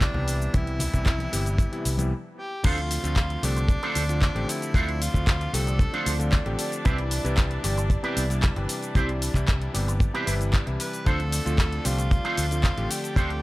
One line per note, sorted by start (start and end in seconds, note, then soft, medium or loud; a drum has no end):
0.00 0.11 C3 medium
0.00 0.11 E3 medium
0.00 0.11 G3 medium
0.00 0.11 B3 medium
0.00 2.11 D4 medium
0.00 0.56 D4 loud
0.00 0.12 E4 medium
0.00 2.11 E5 medium
0.00 kick loud
0.00 clap loud
0.00 closed hi-hat medium
0.00 shaker soft
0.14 0.47 C2 loud
0.14 0.50 C3 medium
0.14 0.51 E3 medium
0.14 0.51 G3 medium
0.14 0.51 B3 medium
0.14 0.51 G4 medium
0.14 low conga medium
0.28 open hi-hat loud
0.28 shaker medium
0.42 shaker soft
0.53 0.86 C2 medium
0.53 0.90 C3 medium
0.53 0.90 E3 medium
0.53 0.90 G3 medium
0.53 0.90 B3 medium
0.53 0.91 E4 medium
0.53 2.12 E4 loud
0.53 kick loud
0.53 closed hi-hat medium
0.53 high conga medium
0.53 shaker soft
0.67 closed hi-hat soft
0.79 open hi-hat loud
0.79 low conga medium
0.79 shaker medium
0.93 1.26 C2 medium
0.93 1.29 C3 medium
0.93 1.30 E3 medium
0.93 1.30 G3 medium
0.93 1.30 B3 medium
0.93 1.30 E4 loud
0.93 kick medium
0.93 shaker soft
1.06 kick loud
1.06 clap loud
1.06 closed hi-hat medium
1.06 shaker soft
1.19 closed hi-hat soft
1.19 high conga medium
1.32 1.65 G1 medium
1.32 1.69 C3 medium
1.32 1.69 E3 medium
1.32 1.69 G3 medium
1.32 1.69 B3 medium
1.32 1.69 G4 medium
1.32 open hi-hat loud
1.32 shaker medium
1.46 closed hi-hat medium
1.46 shaker soft
1.58 kick loud
1.58 closed hi-hat medium
1.58 shaker soft
1.72 1.95 C3 medium
1.72 1.95 E3 medium
1.72 1.95 G3 medium
1.72 1.96 B3 medium
1.72 1.96 E4 medium
1.72 closed hi-hat soft
1.85 2.12 C2 loud
1.85 open hi-hat loud
1.85 shaker medium
1.98 2.11 C3 medium
1.98 2.11 E3 medium
1.98 2.11 G3 medium
1.98 2.12 B3 medium
1.98 2.12 E4 medium
1.98 closed hi-hat medium
1.98 high conga medium
1.98 shaker soft
2.38 2.66 G4 medium
2.63 2.97 D2 loud
2.63 3.00 D3 medium
2.63 3.00 F3 medium
2.63 3.00 A3 medium
2.63 3.01 C4 medium
2.63 11.05 D4 medium
2.63 2.77 D4 loud
2.63 3.01 F4 medium
2.63 2.78 F4 loud
2.63 3.46 F4 loud
2.63 2.78 A4 loud
2.63 2.78 C5 loud
2.63 11.05 D5 medium
2.63 kick loud
2.63 closed hi-hat medium
2.63 crash loud
2.63 shaker soft
2.78 closed hi-hat soft
2.91 muted clean electric guitar stroke soft
2.91 open hi-hat loud
2.91 shaker medium
3.04 3.36 D2 medium
3.04 3.40 D3 medium
3.04 3.40 F3 medium
3.04 3.40 A3 medium
3.04 3.40 C4 medium
3.04 3.40 F4 loud
3.04 closed hi-hat soft
3.04 shaker soft
3.16 kick loud
3.16 clap loud
3.16 closed hi-hat medium
3.16 shaker soft
3.30 closed hi-hat soft
3.43 3.75 C2 medium
3.43 3.80 D3 medium
3.43 3.80 F3 medium
3.43 3.80 A3 medium
3.43 3.80 C4 medium
3.43 4.51 D4 loud
3.43 3.80 G4 medium
3.43 muted clean electric guitar stroke medium
3.43 open hi-hat loud
3.43 shaker medium
3.56 muted clean electric guitar stroke medium
3.56 closed hi-hat soft
3.56 shaker soft
3.68 muted clean electric guitar stroke soft
3.68 kick loud
3.68 closed hi-hat medium
3.68 shaker soft
3.82 4.06 D3 medium
3.82 4.06 F3 medium
3.82 4.06 A3 medium
3.82 4.06 C4 medium
3.82 4.02 D4 loud
3.82 4.06 F4 medium
3.82 4.03 F4 medium
3.82 4.03 A4 loud
3.82 4.03 C5 loud
3.82 closed hi-hat soft
3.95 4.28 D2 medium
3.95 open hi-hat loud
3.95 shaker medium
4.08 4.32 D3 medium
4.08 4.32 F3 medium
4.08 4.32 A3 medium
4.08 4.32 C4 medium
4.08 4.32 F4 medium
4.08 closed hi-hat soft
4.08 shaker soft
4.22 muted clean electric guitar stroke medium
4.22 kick loud
4.22 clap loud
4.22 closed hi-hat medium
4.22 shaker soft
4.35 4.44 A1 medium
4.35 4.71 D3 medium
4.35 4.71 F3 medium
4.35 4.72 A3 medium
4.35 4.72 C4 medium
4.35 4.72 G4 medium
4.35 muted clean electric guitar stroke soft
4.35 closed hi-hat soft
4.49 5.03 E4 loud
4.49 open hi-hat loud
4.49 shaker medium
4.62 closed hi-hat soft
4.62 shaker soft
4.74 5.07 D2 medium
4.74 5.11 D3 medium
4.74 5.11 F3 medium
4.74 5.11 A3 medium
4.74 5.11 C4 medium
4.74 4.88 D4 loud
4.74 4.88 F4 loud
4.74 5.11 F4 medium
4.74 4.88 A4 loud
4.74 4.88 C5 loud
4.74 kick loud
4.74 closed hi-hat medium
4.74 shaker soft
4.89 closed hi-hat soft
5.02 5.56 F4 loud
5.02 muted clean electric guitar stroke soft
5.02 open hi-hat loud
5.02 shaker medium
5.14 5.47 D2 medium
5.14 5.50 D3 medium
5.14 5.50 F3 medium
5.14 5.50 A3 medium
5.14 5.51 C4 medium
5.14 5.51 F4 medium
5.14 kick medium
5.14 closed hi-hat soft
5.14 shaker soft
5.27 kick loud
5.27 clap loud
5.27 closed hi-hat medium
5.27 shaker soft
5.41 closed hi-hat soft
5.53 5.86 C2 medium
5.53 5.90 D3 medium
5.53 5.90 F3 medium
5.53 5.90 A3 medium
5.53 5.90 C4 medium
5.53 5.90 G4 medium
5.53 6.07 A4 loud
5.53 muted clean electric guitar stroke medium
5.53 open hi-hat loud
5.53 shaker medium
5.67 muted clean electric guitar stroke medium
5.67 closed hi-hat soft
5.67 shaker soft
5.79 muted clean electric guitar stroke soft
5.79 kick loud
5.79 closed hi-hat medium
5.79 shaker soft
5.93 6.16 D3 medium
5.93 6.16 F3 medium
5.93 6.16 A3 medium
5.93 6.16 C4 medium
5.93 6.13 D4 loud
5.93 6.17 F4 medium
5.93 6.13 F4 medium
5.93 6.13 A4 loud
5.93 6.13 C5 loud
5.93 closed hi-hat soft
6.06 6.39 D2 medium
6.06 open hi-hat loud
6.06 shaker medium
6.19 6.42 D3 medium
6.19 6.43 F3 medium
6.19 6.43 A3 medium
6.19 6.43 C4 medium
6.19 6.43 F4 medium
6.19 closed hi-hat soft
6.19 shaker soft
6.32 muted clean electric guitar stroke medium
6.32 kick loud
6.32 clap loud
6.32 closed hi-hat medium
6.32 shaker soft
6.45 6.55 A1 medium
6.45 6.82 D3 medium
6.45 6.82 F3 medium
6.45 6.82 A3 medium
6.45 6.82 C4 medium
6.45 6.82 G4 loud
6.45 muted clean electric guitar stroke soft
6.45 closed hi-hat soft
6.59 open hi-hat loud
6.59 shaker medium
6.72 closed hi-hat soft
6.72 shaker soft
6.85 7.18 C2 loud
6.85 7.21 C3 medium
6.85 7.21 E3 medium
6.85 7.22 G3 medium
6.85 6.99 C4 loud
6.85 6.99 E4 medium
6.85 7.22 E4 medium
6.85 6.99 G4 loud
6.85 7.22 B4 medium
6.85 6.99 B4 loud
6.85 kick loud
6.85 closed hi-hat medium
6.85 shaker soft
6.98 closed hi-hat soft
7.11 muted clean electric guitar stroke soft
7.11 open hi-hat loud
7.11 shaker medium
7.24 7.57 C2 medium
7.24 7.61 C3 medium
7.24 7.61 E3 medium
7.24 7.61 G3 medium
7.24 7.61 E4 loud
7.24 7.61 B4 medium
7.24 closed hi-hat soft
7.24 shaker soft
7.37 kick loud
7.37 clap loud
7.37 closed hi-hat medium
7.37 shaker soft
7.51 closed hi-hat soft
7.63 7.97 G1 medium
7.63 8.00 C3 medium
7.63 8.00 E3 medium
7.63 8.00 G3 medium
7.63 8.01 G4 medium
7.63 muted clean electric guitar stroke medium
7.63 open hi-hat loud
7.63 shaker medium
7.77 muted clean electric guitar stroke medium
7.77 closed hi-hat soft
7.77 shaker soft
7.90 muted clean electric guitar stroke soft
7.90 kick loud
7.90 closed hi-hat medium
7.90 shaker soft
8.03 8.26 C3 medium
8.03 8.27 E3 medium
8.03 8.27 G3 medium
8.03 8.27 B3 medium
8.03 8.23 C4 loud
8.03 8.27 E4 medium
8.03 8.23 E4 medium
8.03 8.24 G4 loud
8.03 8.24 B4 loud
8.03 closed hi-hat soft
8.17 8.49 C2 medium
8.17 open hi-hat loud
8.17 shaker medium
8.29 8.53 C3 medium
8.29 8.53 E3 medium
8.29 8.53 G3 medium
8.29 8.53 B3 medium
8.29 8.53 E4 medium
8.29 closed hi-hat soft
8.29 shaker soft
8.42 muted clean electric guitar stroke loud
8.42 kick loud
8.42 clap loud
8.42 closed hi-hat medium
8.42 shaker soft
8.56 8.65 G1 medium
8.56 8.92 C3 medium
8.56 8.92 E3 medium
8.56 8.93 G3 medium
8.56 8.93 G4 medium
8.56 8.93 B4 medium
8.56 muted clean electric guitar stroke soft
8.56 closed hi-hat soft
8.69 open hi-hat loud
8.69 shaker medium
8.83 closed hi-hat soft
8.83 shaker soft
8.95 9.28 C2 medium
8.95 9.32 C3 medium
8.95 9.32 E3 medium
8.95 9.32 G3 medium
8.95 9.09 C4 loud
8.95 9.09 E4 loud
8.95 9.32 E4 medium
8.95 9.09 G4 loud
8.95 9.09 C5 loud
8.95 kick loud
8.95 closed hi-hat medium
8.95 shaker soft
9.09 closed hi-hat soft
9.22 muted clean electric guitar stroke soft
9.22 open hi-hat loud
9.22 shaker medium
9.34 9.67 C2 medium
9.34 9.71 C3 medium
9.34 9.71 E3 medium
9.34 9.71 G3 medium
9.34 9.72 E4 loud
9.34 kick medium
9.34 clap soft
9.34 closed hi-hat soft
9.34 shaker soft
9.48 kick loud
9.48 clap loud
9.48 closed hi-hat medium
9.48 shaker soft
9.62 closed hi-hat soft
9.73 10.07 G1 medium
9.73 10.11 C3 medium
9.73 10.11 E3 medium
9.73 10.11 G3 medium
9.73 10.11 B3 medium
9.73 10.11 G4 medium
9.73 muted clean electric guitar stroke medium
9.73 open hi-hat loud
9.73 shaker medium
9.88 muted clean electric guitar stroke medium
9.88 closed hi-hat soft
9.88 shaker soft
10.00 muted clean electric guitar stroke soft
10.00 kick loud
10.00 closed hi-hat medium
10.00 shaker soft
10.13 10.24 C3 medium
10.13 10.24 E3 medium
10.13 10.25 G3 medium
10.13 10.25 B3 medium
10.13 10.34 C4 loud
10.13 10.25 E4 medium
10.13 10.34 E4 medium
10.13 10.34 G4 loud
10.13 10.34 B4 loud
10.13 closed hi-hat soft
10.26 10.60 G1 medium
10.26 10.63 C3 medium
10.26 10.63 E3 medium
10.26 10.63 G3 medium
10.26 10.64 E4 loud
10.26 10.64 B4 medium
10.26 open hi-hat loud
10.26 shaker medium
10.41 closed hi-hat soft
10.41 shaker soft
10.53 muted clean electric guitar stroke medium
10.53 kick loud
10.53 clap loud
10.53 closed hi-hat medium
10.53 shaker soft
10.66 10.76 C2 medium
10.66 11.03 C3 medium
10.66 11.03 E3 medium
10.66 11.03 G3 medium
10.66 11.03 E4 medium
10.66 muted clean electric guitar stroke soft
10.66 closed hi-hat soft
10.80 11.08 B4 medium
10.80 open hi-hat loud
10.80 shaker medium
10.93 closed hi-hat soft
10.93 shaker soft
11.05 11.39 D2 loud
11.05 11.42 D3 medium
11.05 11.42 F3 medium
11.05 11.43 A3 medium
11.05 11.43 C4 medium
11.05 11.20 D4 loud
11.05 13.42 D4 medium
11.05 11.43 F4 medium
11.05 11.20 F4 medium
11.05 11.20 A4 loud
11.05 11.87 A4 loud
11.05 11.20 C5 loud
11.05 13.42 D5 medium
11.05 kick loud
11.05 closed hi-hat medium
11.05 shaker soft
11.20 closed hi-hat soft
11.32 muted clean electric guitar stroke soft
11.32 open hi-hat loud
11.32 shaker medium
11.45 11.78 D2 medium
11.45 11.82 D3 medium
11.45 11.82 F3 medium
11.45 11.82 A3 medium
11.45 11.82 C4 medium
11.45 11.82 F4 loud
11.45 closed hi-hat soft
11.45 shaker soft
11.58 kick loud
11.58 clap loud
11.58 closed hi-hat medium
11.58 shaker soft
11.72 closed hi-hat soft
11.84 12.18 C2 medium
11.84 12.21 D3 medium
11.84 12.21 F3 medium
11.84 12.21 A3 medium
11.84 12.22 C4 medium
11.84 12.92 F4 loud
11.84 12.22 G4 medium
11.84 muted clean electric guitar stroke medium
11.84 open hi-hat loud
11.84 shaker medium
11.98 muted clean electric guitar stroke medium
11.98 closed hi-hat soft
11.98 shaker soft
12.11 muted clean electric guitar stroke soft
12.11 kick loud
12.11 closed hi-hat medium
12.11 shaker soft
12.24 12.48 D3 medium
12.24 12.48 F3 medium
12.24 12.48 A3 medium
12.24 12.48 C4 medium
12.24 12.44 D4 loud
12.24 12.44 F4 medium
12.24 12.48 F4 medium
12.24 12.45 A4 loud
12.24 12.45 C5 loud
12.24 closed hi-hat soft
12.37 12.70 D2 medium
12.37 open hi-hat loud
12.37 shaker medium
12.51 12.74 D3 medium
12.51 12.74 F3 medium
12.51 12.75 A3 medium
12.51 12.75 C4 medium
12.51 12.75 F4 medium
12.51 closed hi-hat soft
12.51 shaker soft
12.63 muted clean electric guitar stroke medium
12.63 kick loud
12.63 clap loud
12.63 closed hi-hat medium
12.63 shaker soft
12.77 12.86 A1 medium
12.77 13.13 D3 medium
12.77 13.14 F3 medium
12.77 13.14 A3 medium
12.77 13.14 C4 medium
12.77 13.14 G4 loud
12.77 muted clean electric guitar stroke soft
12.77 closed hi-hat soft
12.90 13.42 G4 loud
12.90 open hi-hat loud
12.90 shaker medium
13.04 closed hi-hat soft
13.04 shaker soft
13.16 13.42 D2 medium
13.16 13.42 D3 medium
13.16 13.42 F3 medium
13.16 13.42 A3 medium
13.16 13.42 C4 medium
13.16 13.30 D4 loud
13.16 13.30 F4 medium
13.16 13.42 F4 medium
13.16 13.30 A4 loud
13.16 13.30 C5 loud
13.16 kick loud
13.16 closed hi-hat medium
13.16 shaker soft
13.30 closed hi-hat soft